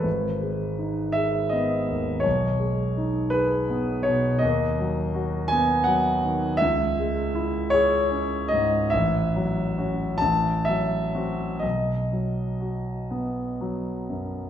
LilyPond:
<<
  \new Staff \with { instrumentName = "Grand piano" } { \time 12/8 \key gis \phrygian \tempo 4. = 54 b'4. e''8 dis''4 cis''4. b'4 cis''8 | \key b \mixolydian dis''4. gis''8 fis''4 e''4. cis''4 dis''8 | e''4. a''8 e''4 dis''4. r4. | }
  \new Staff \with { instrumentName = "Grand piano" } { \clef bass \time 12/8 \key gis \phrygian gis,,8 gis8 dis'8 gis'8 b8 dis,8 b,,8 gis8 dis'8 gis'8 b8 b,8 | \key b \mixolydian dis,8 fis8 fis'8 b8 fis8 dis8 cis,8 gis8 e'8 gis'8 cis'8 gis,8 | a,,8 fis8 <cis' fis'>8 a,,8 fis8 <c' fis'>8 b,,8 fis8 fis'8 b8 fis8 fis,8 | }
>>